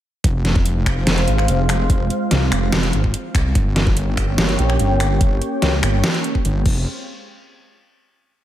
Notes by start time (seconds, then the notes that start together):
0.24 F1 G#3 C4 F4 C5 F5, kick, closed hi-hat
0.45 snare, closed hi-hat
0.56 kick
0.66 closed hi-hat
0.86 finger snap, kick, open hi-hat
1.07 F1, snare, closed hi-hat
1.18 closed hi-hat
1.28 G#1, closed hi-hat
1.38 finger snap
1.48 F1, closed hi-hat
1.69 finger snap, open hi-hat
1.90 kick, closed hi-hat
2.10 closed hi-hat
2.31 C2, snare, closed hi-hat
2.52 F1, finger snap, open hi-hat
2.72 F1, finger snap, snare, closed hi-hat
2.83 closed hi-hat
2.93 G#1, closed hi-hat
3.04 kick
3.14 closed hi-hat
3.35 C2, finger snap, kick, open hi-hat
3.55 G1 A#3 C#4 G4 C#5 G5, kick, closed hi-hat
3.76 snare, closed hi-hat
3.87 kick
3.97 closed hi-hat
4.17 finger snap, kick, open hi-hat
4.38 G1, snare, closed hi-hat
4.49 closed hi-hat
4.59 A#1, closed hi-hat
4.70 finger snap
4.79 G1, closed hi-hat
5.00 finger snap, open hi-hat
5.21 kick, closed hi-hat
5.42 closed hi-hat
5.62 C#2, snare, closed hi-hat
5.83 G1, finger snap, open hi-hat
6.04 finger snap, snare, closed hi-hat
6.14 closed hi-hat
6.24 closed hi-hat
6.35 kick
6.45 G1, closed hi-hat
6.66 F1 G#3 C4 F4 C5 F5, kick, crash